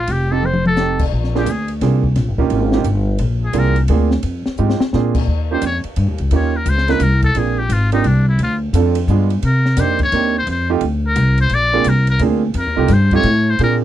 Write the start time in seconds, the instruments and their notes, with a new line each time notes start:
Already playing: trumpet F4
0.00 muted trumpet F4
0.07 upright bass F1, trumpet G4, kick, ride
0.12 muted trumpet G4
0.31 grand piano A3 C4 D#4 G4, muted trumpet A4, trumpet A4
0.43 trumpet C5, muted trumpet C5, mid tom
0.54 mid tom
0.66 muted trumpet A4, trumpet A4, mid tom
0.76 grand piano A3 C4 D#4 G4, snare, hi-hat pedal
0.99 kick, crash
1.12 upright bass A#1, kick
1.24 snare
1.35 grand piano A#3 C4 D4 F4 G#4, muted trumpet G4, snare
1.46 upright bass D2, kick, hi-hat pedal, ride
1.50 muted trumpet G#4
1.68 ride
1.81 upright bass C2, grand piano A#3 C4 D4 F4 G#4, kick, snare, ride
2.04 kick
2.16 upright bass A#1, kick, snare, ride
2.28 upright bass G1
2.38 upright bass D#1, grand piano A#3 C#4 D#4 F4 G4, kick
2.50 upright bass G#1, kick, ride
2.72 grand piano A#3 C#4 D#4 F4 G4, snare
2.84 upright bass G1, kick, hi-hat pedal, ride
3.18 upright bass A#1, kick, ride
3.45 muted trumpet G#4
3.53 upright bass C2, grand piano A#3 C4 D4 F4 G#4, kick, hi-hat pedal, ride
3.59 muted trumpet A#4
3.76 ride
3.88 upright bass D2, grand piano A#3 C4 D4 F4 G#4, kick, ride
4.11 snare
4.23 upright bass F2, kick, ride
4.46 muted upright bass stroke, snare
4.57 upright bass G#2, grand piano G#3 C4 D#4 F4 G4, hi-hat pedal
4.70 snare
4.80 muted upright bass stroke, snare
4.93 upright bass A#2, grand piano A#3 C4 D4 F4 G#4, snare
5.15 kick, crash
5.27 upright bass D#2, kick
5.51 grand piano A#3 C#4 D#4 F4 G4, muted trumpet C5
5.62 upright bass F2, kick, hi-hat pedal, ride
5.66 muted trumpet C#5
5.84 muted upright bass stroke, ride
5.96 upright bass G2, kick, ride
6.08 upright bass D#2
6.18 upright bass C#2, ride
6.31 upright bass D#2, grand piano A#3 C#4 D#4 F4 G4, kick, ride
6.35 muted trumpet C#5
6.56 muted trumpet A#4
6.66 upright bass C#2, muted trumpet C5, kick, hi-hat pedal, ride
6.78 snare
6.88 grand piano A#3 C#4 D#4 F4 A#4, muted trumpet B4, snare, ride
7.00 upright bass C2, muted trumpet A#4, kick, hi-hat pedal, ride
7.22 muted trumpet A4, kick, ride
7.35 upright bass A#1, grand piano A#3 C4 D4 F4 G#4, muted trumpet G#4, kick, ride
7.59 muted trumpet G4
7.69 upright bass G#1, muted trumpet F4, kick, hi-hat pedal, ride
7.92 grand piano A#3 C4 D4 F4 G4, muted trumpet D#4, ride
8.04 upright bass C2, muted trumpet D4, kick, ride
8.28 muted trumpet E4
8.38 upright bass D2, kick, ride
8.43 muted trumpet F4
8.73 upright bass F2, grand piano A3 C4 D4 F4 A4, kick, hi-hat pedal, ride
8.95 ride
9.08 upright bass G2, grand piano G#3 B3 D4 F4 G#4, kick, hi-hat pedal
9.30 ride
9.43 upright bass C3, muted trumpet A#4, kick, ride
9.66 snare
9.77 upright bass F2, grand piano A#3 C4 D4 D#4 G4, muted trumpet C5, kick, snare, hi-hat pedal, ride
9.99 muted trumpet C#5, kick, ride
10.12 upright bass D#2, grand piano A#3 C4 D4 D#4 G4, kick, ride
10.38 muted trumpet C5
10.47 upright bass F2, kick, ride
10.51 muted trumpet C5
10.70 grand piano A3 C4 D#4 F4 G4
10.81 upright bass D2, kick, ride
11.07 muted trumpet A#4
11.16 upright bass C2, kick, hi-hat pedal, ride
11.38 muted trumpet C5, ride
11.49 upright bass A#1, kick, ride
11.54 muted trumpet D5
11.73 grand piano A#3 C4 D4 F4 G#4
11.84 upright bass C2, kick, hi-hat pedal, ride
11.89 muted trumpet A#4
12.07 muted trumpet A#4, ride
12.19 upright bass D2, grand piano A#3 C4 D4 F4 G#4, kick, ride
12.54 upright bass F2, kick, ride
12.59 muted trumpet A#4
12.66 upright bass D#2
12.76 upright bass C2, grand piano A3 C4 D#4 F4 G4
12.88 upright bass G2, kick, snare, hi-hat pedal, ride
12.93 muted trumpet C5
13.11 grand piano A3 C4 D#4 F4 G4, kick, ride
13.15 muted trumpet C#5
13.23 upright bass A2, kick, ride
13.50 muted trumpet C5
13.59 upright bass A#2, grand piano A#3 C4 D4 F4 G#4, kick, ride
13.63 muted trumpet A#4